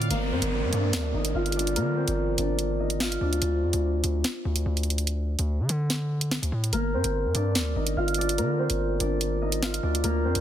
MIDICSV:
0, 0, Header, 1, 6, 480
1, 0, Start_track
1, 0, Key_signature, -2, "minor"
1, 0, Tempo, 413793
1, 125, Time_signature, 4, 2, 24, 8
1, 12071, End_track
2, 0, Start_track
2, 0, Title_t, "Harp"
2, 0, Program_c, 0, 46
2, 0, Note_on_c, 0, 70, 78
2, 0, Note_on_c, 0, 72, 57
2, 0, Note_on_c, 0, 74, 63
2, 0, Note_on_c, 0, 77, 67
2, 0, Note_on_c, 0, 86, 88
2, 0, Note_on_c, 0, 89, 83
2, 116, Note_off_c, 0, 70, 0
2, 121, Note_on_c, 0, 70, 92
2, 130, Note_on_c, 0, 58, 68
2, 364, Note_off_c, 0, 72, 0
2, 368, Note_on_c, 0, 72, 81
2, 378, Note_on_c, 0, 60, 63
2, 846, Note_off_c, 0, 74, 0
2, 850, Note_on_c, 0, 74, 76
2, 858, Note_on_c, 0, 62, 60
2, 918, Note_off_c, 0, 89, 0
2, 1293, Note_off_c, 0, 86, 0
2, 1321, Note_on_c, 0, 75, 74
2, 1329, Note_on_c, 0, 63, 59
2, 1391, Note_off_c, 0, 62, 0
2, 1391, Note_off_c, 0, 74, 0
2, 1560, Note_off_c, 0, 77, 0
2, 1565, Note_on_c, 0, 77, 80
2, 1574, Note_on_c, 0, 65, 63
2, 1811, Note_on_c, 0, 74, 83
2, 1821, Note_on_c, 0, 62, 61
2, 1881, Note_off_c, 0, 63, 0
2, 1881, Note_off_c, 0, 75, 0
2, 2035, Note_off_c, 0, 70, 0
2, 2040, Note_on_c, 0, 70, 98
2, 2046, Note_off_c, 0, 58, 0
2, 2051, Note_on_c, 0, 58, 77
2, 2277, Note_off_c, 0, 72, 0
2, 2282, Note_on_c, 0, 72, 80
2, 2287, Note_off_c, 0, 60, 0
2, 2292, Note_on_c, 0, 60, 61
2, 2763, Note_off_c, 0, 74, 0
2, 2768, Note_on_c, 0, 74, 71
2, 2772, Note_off_c, 0, 62, 0
2, 2776, Note_on_c, 0, 62, 61
2, 3243, Note_on_c, 0, 75, 79
2, 3253, Note_on_c, 0, 63, 57
2, 3313, Note_off_c, 0, 62, 0
2, 3313, Note_off_c, 0, 74, 0
2, 3488, Note_off_c, 0, 77, 0
2, 3493, Note_on_c, 0, 77, 81
2, 3498, Note_off_c, 0, 65, 0
2, 3503, Note_on_c, 0, 65, 61
2, 3728, Note_on_c, 0, 74, 75
2, 3737, Note_on_c, 0, 62, 69
2, 3797, Note_off_c, 0, 63, 0
2, 3797, Note_off_c, 0, 75, 0
2, 4500, Note_off_c, 0, 70, 0
2, 4578, Note_off_c, 0, 72, 0
2, 5424, Note_off_c, 0, 77, 0
2, 5772, Note_off_c, 0, 60, 0
2, 5781, Note_off_c, 0, 58, 0
2, 5870, Note_off_c, 0, 74, 0
2, 6429, Note_off_c, 0, 65, 0
2, 6984, Note_off_c, 0, 62, 0
2, 7804, Note_on_c, 0, 70, 94
2, 7814, Note_on_c, 0, 58, 69
2, 8049, Note_on_c, 0, 72, 80
2, 8057, Note_on_c, 0, 60, 63
2, 8530, Note_on_c, 0, 74, 76
2, 8540, Note_on_c, 0, 62, 62
2, 8999, Note_on_c, 0, 75, 72
2, 9008, Note_on_c, 0, 63, 60
2, 9068, Note_off_c, 0, 62, 0
2, 9068, Note_off_c, 0, 74, 0
2, 9246, Note_on_c, 0, 77, 82
2, 9255, Note_on_c, 0, 65, 65
2, 9488, Note_on_c, 0, 74, 83
2, 9498, Note_on_c, 0, 62, 62
2, 9558, Note_off_c, 0, 63, 0
2, 9558, Note_off_c, 0, 75, 0
2, 9715, Note_off_c, 0, 70, 0
2, 9719, Note_on_c, 0, 70, 99
2, 9724, Note_off_c, 0, 58, 0
2, 9729, Note_on_c, 0, 58, 74
2, 9955, Note_off_c, 0, 72, 0
2, 9960, Note_on_c, 0, 72, 79
2, 9964, Note_off_c, 0, 60, 0
2, 9969, Note_on_c, 0, 60, 61
2, 10442, Note_off_c, 0, 74, 0
2, 10446, Note_on_c, 0, 74, 71
2, 10452, Note_off_c, 0, 62, 0
2, 10456, Note_on_c, 0, 62, 62
2, 10925, Note_on_c, 0, 75, 77
2, 10934, Note_on_c, 0, 63, 56
2, 10994, Note_off_c, 0, 62, 0
2, 10994, Note_off_c, 0, 74, 0
2, 11168, Note_off_c, 0, 77, 0
2, 11173, Note_on_c, 0, 77, 81
2, 11177, Note_off_c, 0, 65, 0
2, 11181, Note_on_c, 0, 65, 62
2, 11410, Note_on_c, 0, 74, 73
2, 11419, Note_on_c, 0, 62, 67
2, 11479, Note_off_c, 0, 63, 0
2, 11479, Note_off_c, 0, 75, 0
2, 11641, Note_off_c, 0, 70, 0
2, 11645, Note_on_c, 0, 70, 102
2, 11650, Note_off_c, 0, 58, 0
2, 11655, Note_on_c, 0, 58, 79
2, 11875, Note_off_c, 0, 72, 0
2, 11880, Note_on_c, 0, 72, 81
2, 11885, Note_off_c, 0, 60, 0
2, 11890, Note_on_c, 0, 60, 62
2, 12071, Note_off_c, 0, 58, 0
2, 12071, Note_off_c, 0, 60, 0
2, 12071, Note_off_c, 0, 62, 0
2, 12071, Note_off_c, 0, 65, 0
2, 12071, Note_off_c, 0, 70, 0
2, 12071, Note_off_c, 0, 72, 0
2, 12071, Note_off_c, 0, 74, 0
2, 12071, Note_off_c, 0, 77, 0
2, 12071, End_track
3, 0, Start_track
3, 0, Title_t, "Tine electric piano"
3, 0, Program_c, 1, 4
3, 0, Control_c, 1, 64, 127
3, 0, Note_on_c, 1, 50, 51
3, 0, Note_on_c, 1, 60, 45
3, 0, Note_on_c, 1, 65, 57
3, 124, Note_off_c, 1, 60, 0
3, 132, Note_off_c, 1, 65, 0
3, 140, Control_c, 1, 64, 0
3, 150, Note_off_c, 1, 50, 0
3, 12071, End_track
4, 0, Start_track
4, 0, Title_t, "808-style bass"
4, 0, Program_c, 2, 38
4, 123, Note_on_c, 2, 31, 102
4, 363, Note_on_c, 2, 43, 102
4, 380, Note_off_c, 2, 31, 0
4, 484, Note_off_c, 2, 43, 0
4, 490, Note_on_c, 2, 31, 110
4, 731, Note_on_c, 2, 43, 99
4, 748, Note_off_c, 2, 31, 0
4, 839, Note_off_c, 2, 43, 0
4, 844, Note_on_c, 2, 43, 104
4, 1084, Note_on_c, 2, 38, 100
4, 1102, Note_off_c, 2, 43, 0
4, 1313, Note_off_c, 2, 38, 0
4, 1324, Note_on_c, 2, 31, 102
4, 1555, Note_off_c, 2, 31, 0
4, 1564, Note_on_c, 2, 31, 104
4, 2045, Note_on_c, 2, 50, 93
4, 2062, Note_off_c, 2, 31, 0
4, 2394, Note_off_c, 2, 50, 0
4, 2411, Note_on_c, 2, 31, 100
4, 2750, Note_off_c, 2, 31, 0
4, 2763, Note_on_c, 2, 31, 100
4, 3686, Note_off_c, 2, 31, 0
4, 3724, Note_on_c, 2, 38, 102
4, 3955, Note_off_c, 2, 38, 0
4, 3965, Note_on_c, 2, 38, 103
4, 4206, Note_on_c, 2, 41, 104
4, 4223, Note_off_c, 2, 38, 0
4, 4326, Note_off_c, 2, 41, 0
4, 4332, Note_on_c, 2, 38, 101
4, 4671, Note_off_c, 2, 38, 0
4, 4684, Note_on_c, 2, 38, 100
4, 4915, Note_off_c, 2, 38, 0
4, 5164, Note_on_c, 2, 38, 103
4, 5395, Note_off_c, 2, 38, 0
4, 5404, Note_on_c, 2, 38, 103
4, 6218, Note_off_c, 2, 38, 0
4, 6252, Note_on_c, 2, 38, 108
4, 6493, Note_on_c, 2, 50, 99
4, 6510, Note_off_c, 2, 38, 0
4, 6599, Note_off_c, 2, 50, 0
4, 6605, Note_on_c, 2, 50, 102
4, 7418, Note_off_c, 2, 50, 0
4, 7452, Note_on_c, 2, 38, 102
4, 7560, Note_off_c, 2, 38, 0
4, 7565, Note_on_c, 2, 45, 100
4, 7795, Note_off_c, 2, 45, 0
4, 7805, Note_on_c, 2, 31, 102
4, 8045, Note_on_c, 2, 43, 98
4, 8063, Note_off_c, 2, 31, 0
4, 8166, Note_off_c, 2, 43, 0
4, 8172, Note_on_c, 2, 31, 105
4, 8412, Note_on_c, 2, 43, 97
4, 8429, Note_off_c, 2, 31, 0
4, 8519, Note_off_c, 2, 43, 0
4, 8524, Note_on_c, 2, 43, 104
4, 8765, Note_on_c, 2, 38, 102
4, 8782, Note_off_c, 2, 43, 0
4, 8993, Note_off_c, 2, 38, 0
4, 9004, Note_on_c, 2, 31, 103
4, 9235, Note_off_c, 2, 31, 0
4, 9245, Note_on_c, 2, 31, 106
4, 9725, Note_on_c, 2, 50, 96
4, 9742, Note_off_c, 2, 31, 0
4, 10074, Note_off_c, 2, 50, 0
4, 10092, Note_on_c, 2, 31, 103
4, 10431, Note_off_c, 2, 31, 0
4, 10445, Note_on_c, 2, 31, 102
4, 11367, Note_off_c, 2, 31, 0
4, 11405, Note_on_c, 2, 38, 107
4, 11635, Note_off_c, 2, 38, 0
4, 11645, Note_on_c, 2, 38, 104
4, 11884, Note_on_c, 2, 41, 104
4, 11902, Note_off_c, 2, 38, 0
4, 12005, Note_off_c, 2, 41, 0
4, 12012, Note_on_c, 2, 38, 103
4, 12071, Note_off_c, 2, 38, 0
4, 12071, End_track
5, 0, Start_track
5, 0, Title_t, "Downlifter"
5, 0, Program_c, 3, 103
5, 123, Note_on_c, 3, 60, 85
5, 3964, Note_off_c, 3, 60, 0
5, 12071, End_track
6, 0, Start_track
6, 0, Title_t, "Drums"
6, 18, Note_on_c, 9, 42, 78
6, 123, Note_off_c, 9, 42, 0
6, 123, Note_on_c, 9, 42, 84
6, 239, Note_off_c, 9, 42, 0
6, 488, Note_on_c, 9, 42, 83
6, 604, Note_off_c, 9, 42, 0
6, 842, Note_on_c, 9, 42, 80
6, 958, Note_off_c, 9, 42, 0
6, 1081, Note_on_c, 9, 42, 78
6, 1084, Note_on_c, 9, 38, 109
6, 1197, Note_off_c, 9, 42, 0
6, 1200, Note_off_c, 9, 38, 0
6, 1446, Note_on_c, 9, 42, 86
6, 1562, Note_off_c, 9, 42, 0
6, 1692, Note_on_c, 9, 42, 43
6, 1767, Note_off_c, 9, 42, 0
6, 1767, Note_on_c, 9, 42, 58
6, 1847, Note_off_c, 9, 42, 0
6, 1847, Note_on_c, 9, 42, 72
6, 1939, Note_off_c, 9, 42, 0
6, 1939, Note_on_c, 9, 42, 82
6, 2043, Note_off_c, 9, 42, 0
6, 2043, Note_on_c, 9, 42, 85
6, 2159, Note_off_c, 9, 42, 0
6, 2408, Note_on_c, 9, 42, 84
6, 2524, Note_off_c, 9, 42, 0
6, 2761, Note_on_c, 9, 42, 82
6, 2877, Note_off_c, 9, 42, 0
6, 3000, Note_on_c, 9, 42, 80
6, 3116, Note_off_c, 9, 42, 0
6, 3364, Note_on_c, 9, 42, 84
6, 3480, Note_off_c, 9, 42, 0
6, 3483, Note_on_c, 9, 38, 111
6, 3599, Note_off_c, 9, 38, 0
6, 3618, Note_on_c, 9, 42, 81
6, 3734, Note_off_c, 9, 42, 0
6, 3859, Note_on_c, 9, 42, 76
6, 3963, Note_off_c, 9, 42, 0
6, 3963, Note_on_c, 9, 42, 83
6, 4079, Note_off_c, 9, 42, 0
6, 4328, Note_on_c, 9, 42, 84
6, 4444, Note_off_c, 9, 42, 0
6, 4683, Note_on_c, 9, 42, 81
6, 4799, Note_off_c, 9, 42, 0
6, 4921, Note_on_c, 9, 42, 77
6, 4924, Note_on_c, 9, 38, 109
6, 5037, Note_off_c, 9, 42, 0
6, 5040, Note_off_c, 9, 38, 0
6, 5285, Note_on_c, 9, 42, 88
6, 5401, Note_off_c, 9, 42, 0
6, 5532, Note_on_c, 9, 42, 46
6, 5608, Note_off_c, 9, 42, 0
6, 5608, Note_on_c, 9, 42, 59
6, 5687, Note_off_c, 9, 42, 0
6, 5687, Note_on_c, 9, 42, 71
6, 5779, Note_off_c, 9, 42, 0
6, 5779, Note_on_c, 9, 42, 82
6, 5883, Note_off_c, 9, 42, 0
6, 5883, Note_on_c, 9, 42, 83
6, 5999, Note_off_c, 9, 42, 0
6, 6249, Note_on_c, 9, 42, 83
6, 6365, Note_off_c, 9, 42, 0
6, 6603, Note_on_c, 9, 42, 82
6, 6719, Note_off_c, 9, 42, 0
6, 6843, Note_on_c, 9, 42, 77
6, 6846, Note_on_c, 9, 38, 64
6, 6959, Note_off_c, 9, 42, 0
6, 6962, Note_off_c, 9, 38, 0
6, 7206, Note_on_c, 9, 42, 84
6, 7322, Note_off_c, 9, 42, 0
6, 7325, Note_on_c, 9, 38, 110
6, 7441, Note_off_c, 9, 38, 0
6, 7459, Note_on_c, 9, 42, 81
6, 7575, Note_off_c, 9, 42, 0
6, 7700, Note_on_c, 9, 42, 76
6, 7804, Note_off_c, 9, 42, 0
6, 7804, Note_on_c, 9, 42, 82
6, 7920, Note_off_c, 9, 42, 0
6, 8168, Note_on_c, 9, 42, 85
6, 8284, Note_off_c, 9, 42, 0
6, 8522, Note_on_c, 9, 42, 82
6, 8638, Note_off_c, 9, 42, 0
6, 8761, Note_on_c, 9, 42, 78
6, 8764, Note_on_c, 9, 38, 108
6, 8877, Note_off_c, 9, 42, 0
6, 8880, Note_off_c, 9, 38, 0
6, 9124, Note_on_c, 9, 42, 85
6, 9240, Note_off_c, 9, 42, 0
6, 9373, Note_on_c, 9, 42, 45
6, 9448, Note_off_c, 9, 42, 0
6, 9448, Note_on_c, 9, 42, 61
6, 9527, Note_off_c, 9, 42, 0
6, 9527, Note_on_c, 9, 42, 73
6, 9619, Note_off_c, 9, 42, 0
6, 9619, Note_on_c, 9, 42, 82
6, 9724, Note_off_c, 9, 42, 0
6, 9724, Note_on_c, 9, 42, 84
6, 9840, Note_off_c, 9, 42, 0
6, 10089, Note_on_c, 9, 42, 84
6, 10205, Note_off_c, 9, 42, 0
6, 10442, Note_on_c, 9, 42, 84
6, 10558, Note_off_c, 9, 42, 0
6, 10683, Note_on_c, 9, 42, 80
6, 10799, Note_off_c, 9, 42, 0
6, 11046, Note_on_c, 9, 42, 85
6, 11162, Note_off_c, 9, 42, 0
6, 11165, Note_on_c, 9, 38, 110
6, 11281, Note_off_c, 9, 38, 0
6, 11299, Note_on_c, 9, 42, 80
6, 11415, Note_off_c, 9, 42, 0
6, 11540, Note_on_c, 9, 42, 77
6, 11644, Note_off_c, 9, 42, 0
6, 11644, Note_on_c, 9, 42, 88
6, 11760, Note_off_c, 9, 42, 0
6, 12008, Note_on_c, 9, 42, 81
6, 12071, Note_off_c, 9, 42, 0
6, 12071, End_track
0, 0, End_of_file